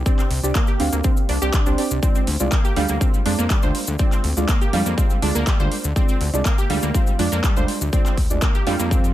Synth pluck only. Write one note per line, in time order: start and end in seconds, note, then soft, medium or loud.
0.06 0.18 C4 medium
0.19 0.30 C4 medium
0.55 0.60 A#3 loud
0.68 0.72 G4 medium
0.93 1.00 A#3 medium
1.04 1.16 C4 medium
1.29 1.41 D4 medium
1.42 1.49 G4 loud
1.54 1.62 D4 medium
1.66 1.74 D4 medium
2.03 2.14 C4 medium
2.16 2.26 C4 medium
2.52 2.57 A#3 loud
2.65 2.69 G4 medium
2.76 2.81 G3 loud
2.89 2.97 A#3 medium
3.01 3.13 C4 medium
3.26 3.38 D4 medium
3.38 3.43 A#3 loud
3.50 3.55 G3 loud
3.63 3.70 C5 medium
3.99 4.11 C4 medium
4.12 4.23 C4 medium
4.49 4.53 A#3 loud
4.62 4.66 G4 medium
4.73 4.78 G3 loud
4.86 4.93 A#3 medium
4.98 5.10 C4 medium
5.22 5.34 D4 medium
5.35 5.40 A#3 loud
5.47 5.52 G3 loud
5.60 5.67 C5 medium
5.96 6.08 C4 medium
6.09 6.20 C4 medium
6.45 6.50 A#3 loud
6.58 6.63 G4 medium
6.70 6.75 G3 loud
6.83 6.90 A#3 medium
6.95 7.07 C4 medium
7.19 7.31 D4 medium
7.32 7.36 A#3 loud
7.44 7.49 G3 loud
7.57 7.64 C5 medium
7.93 8.05 C4 medium
8.06 8.17 C4 medium
8.42 8.47 A#3 loud
8.55 8.59 G4 medium
8.67 8.71 G3 loud
8.80 8.87 A#3 medium
8.91 9.03 C4 medium